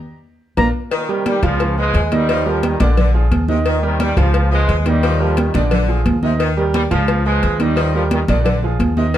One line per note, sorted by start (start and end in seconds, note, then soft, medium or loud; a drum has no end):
0.57 0.70 A#1 medium
0.57 0.69 A#3 loud
0.57 0.68 D4 loud
0.57 0.68 F4 medium
0.57 0.68 A#5 medium
0.57 cowbell loud
0.57 high conga medium
0.91 1.08 A#2 medium
0.91 1.07 D#3 medium
0.91 1.10 D#3 loud
0.91 cowbell loud
0.91 high conga soft
1.09 1.25 C3 medium
1.09 1.25 D#3 medium
1.09 1.37 G3 medium
1.09 1.37 G4 medium
1.09 1.37 A#4 medium
1.09 high conga soft
1.26 1.44 D#3 medium
1.26 1.43 G3 loud
1.26 1.54 G3 medium
1.26 cowbell medium
1.26 high conga medium
1.43 1.91 C#2 loud
1.43 1.76 C#3 medium
1.43 1.57 F3 loud
1.43 1.75 F3 loud
1.43 1.57 F4 loud
1.43 1.57 F5 loud
1.43 cowbell medium
1.43 high conga soft
1.60 1.75 F3 medium
1.60 1.75 F4 medium
1.60 1.75 F5 medium
1.60 cowbell loud
1.60 high conga soft
1.77 1.86 F3 medium
1.77 2.03 F3 medium
1.77 2.03 G#3 loud
1.77 2.06 G#3 medium
1.77 2.06 G#4 medium
1.77 2.06 B4 medium
1.77 high conga soft
1.94 2.74 D#2 medium
1.94 2.13 G#3 medium
1.94 cowbell medium
1.94 high conga soft
2.04 2.11 G#3 medium
2.12 2.26 D#3 medium
2.12 2.46 D#3 medium
2.12 2.46 G3 loud
2.12 2.26 D#4 medium
2.12 2.26 D#5 loud
2.12 cowbell medium
2.12 high conga medium
2.29 2.43 D#3 medium
2.29 2.57 F3 loud
2.29 2.43 D#4 medium
2.29 2.43 D#5 medium
2.29 cowbell loud
2.29 high conga soft
2.46 2.64 D3 medium
2.46 2.64 F3 loud
2.46 2.74 G3 medium
2.46 2.74 G4 medium
2.46 2.74 A#4 medium
2.46 high conga soft
2.63 2.80 A#2 medium
2.63 2.81 D#3 loud
2.63 cowbell medium
2.63 high conga medium
2.80 3.28 A#1 loud
2.80 3.15 A#2 medium
2.80 3.08 D3 loud
2.80 3.15 D3 medium
2.80 2.89 D#3 medium
2.80 3.08 D4 loud
2.80 3.08 D5 loud
2.80 cowbell medium
2.80 high conga medium
2.97 3.26 D3 medium
2.97 cowbell loud
2.97 high conga soft
2.97 low conga medium
3.14 3.42 F3 medium
3.14 3.43 F4 medium
3.14 3.43 G#4 medium
3.14 high conga soft
3.31 4.11 D#2 medium
3.31 cowbell medium
3.31 high conga medium
3.48 3.58 C3 medium
3.48 3.77 D#3 medium
3.48 3.77 D#4 medium
3.48 3.77 D#5 medium
3.48 high conga medium
3.65 3.82 A#2 medium
3.65 3.83 D#3 medium
3.65 3.82 D#3 loud
3.65 cowbell loud
3.65 high conga soft
3.83 3.99 C3 medium
3.83 3.99 D#3 medium
3.83 4.11 G3 medium
3.83 4.11 G4 medium
3.83 4.11 A#4 medium
3.83 high conga soft
4.00 4.18 D#3 medium
4.00 4.28 G3 medium
4.00 4.18 G3 loud
4.00 cowbell medium
4.00 high conga medium
4.17 4.65 C#2 loud
4.17 4.50 C#3 medium
4.17 4.31 F3 loud
4.17 4.49 F3 loud
4.17 4.31 F4 loud
4.17 4.31 F5 loud
4.17 cowbell medium
4.17 high conga soft
4.34 4.48 F3 medium
4.34 4.49 F4 medium
4.34 4.49 F5 medium
4.34 cowbell loud
4.34 high conga soft
4.51 4.60 F3 medium
4.51 4.77 F3 medium
4.51 4.77 G#3 loud
4.51 4.80 G#3 medium
4.51 4.80 G#4 medium
4.51 4.80 B4 medium
4.51 high conga soft
4.68 5.49 D#2 medium
4.68 4.86 G#3 medium
4.68 cowbell medium
4.68 high conga soft
4.79 4.86 G#3 medium
4.86 5.00 D#3 medium
4.86 5.20 D#3 medium
4.86 5.20 G3 loud
4.86 5.00 D#4 loud
4.86 5.00 D#5 medium
4.86 cowbell medium
4.86 high conga medium
5.03 5.17 D#3 medium
5.03 5.31 F3 loud
5.03 5.17 D#4 medium
5.03 5.17 D#5 medium
5.03 cowbell loud
5.03 high conga soft
5.20 5.38 D3 medium
5.20 5.38 F3 loud
5.20 5.48 G3 medium
5.20 5.48 G4 medium
5.20 5.48 A#4 medium
5.20 high conga soft
5.37 5.55 A#2 medium
5.37 5.55 D#3 loud
5.37 cowbell medium
5.37 high conga medium
5.54 6.02 A#1 medium
5.54 5.87 A#2 medium
5.54 5.82 D3 medium
5.54 5.87 D3 medium
5.54 5.63 D#3 medium
5.54 5.83 D4 loud
5.54 5.83 D5 loud
5.54 cowbell medium
5.54 high conga medium
5.71 5.99 D3 loud
5.71 cowbell loud
5.71 high conga soft
5.71 low conga medium
5.88 6.16 F3 medium
5.88 6.17 F4 medium
5.88 6.17 G#4 medium
5.88 high conga soft
6.06 6.86 D#2 medium
6.06 cowbell medium
6.06 high conga medium
6.23 6.32 C3 medium
6.23 6.51 D#3 medium
6.23 6.51 D#4 medium
6.23 6.51 D#5 medium
6.23 high conga medium
6.39 6.49 A#2 medium
6.39 6.57 D#3 loud
6.39 6.48 D#3 medium
6.39 cowbell loud
6.39 high conga soft
6.57 6.65 C3 medium
6.57 6.65 D#3 medium
6.57 6.85 G3 medium
6.57 6.85 G4 medium
6.57 6.85 A#4 medium
6.57 high conga soft
6.74 6.82 D#3 medium
6.74 7.02 G3 medium
6.74 6.82 G3 loud
6.74 cowbell medium
6.74 high conga medium
6.91 7.39 C#2 loud
6.91 7.23 C#3 medium
6.91 7.05 F3 loud
6.91 7.23 F3 loud
6.91 7.05 F4 loud
6.91 7.05 F5 loud
6.91 cowbell medium
6.91 high conga soft
7.08 7.22 F3 medium
7.08 7.22 F4 medium
7.08 7.23 F5 medium
7.08 cowbell loud
7.08 high conga soft
7.25 7.34 F3 medium
7.25 7.58 F3 medium
7.25 7.57 G#3 loud
7.25 7.54 G#3 medium
7.25 7.54 G#4 medium
7.25 7.54 B4 medium
7.25 high conga soft
7.41 8.23 D#2 medium
7.41 7.60 G#3 medium
7.41 cowbell medium
7.41 high conga soft
7.60 7.94 D#3 medium
7.60 7.74 D#3 medium
7.60 7.94 G3 loud
7.60 7.75 D#4 medium
7.60 7.75 D#5 loud
7.60 cowbell medium
7.60 high conga medium
7.76 7.91 D#3 medium
7.76 8.04 F3 loud
7.76 7.92 D#4 medium
7.76 7.92 D#5 medium
7.76 cowbell loud
7.76 high conga soft
7.94 8.03 D3 medium
7.94 8.02 F3 loud
7.94 8.23 G3 medium
7.94 8.23 G4 medium
7.94 8.23 A#4 medium
7.94 high conga soft
8.11 8.20 A#2 medium
8.11 8.20 D#3 loud
8.11 cowbell medium
8.11 high conga medium
8.28 8.76 A#1 loud
8.28 8.60 A#2 medium
8.28 8.60 D3 medium
8.28 8.57 D3 loud
8.28 8.37 D#3 medium
8.28 8.57 D4 loud
8.28 8.57 D5 loud
8.28 cowbell medium
8.28 high conga loud
8.44 8.73 D3 medium
8.44 cowbell loud
8.44 high conga soft
8.44 low conga medium
8.63 8.92 F3 medium
8.63 8.92 F4 medium
8.63 8.92 G#4 medium
8.63 high conga soft
8.80 9.18 D#2 medium
8.80 cowbell medium
8.80 high conga medium
8.97 9.06 C3 medium
8.97 9.18 D#3 medium
8.97 9.18 D#4 medium
8.97 9.18 D#5 loud
8.97 high conga medium
9.13 9.18 A#2 medium
9.13 9.18 D#3 loud
9.13 cowbell loud
9.13 high conga soft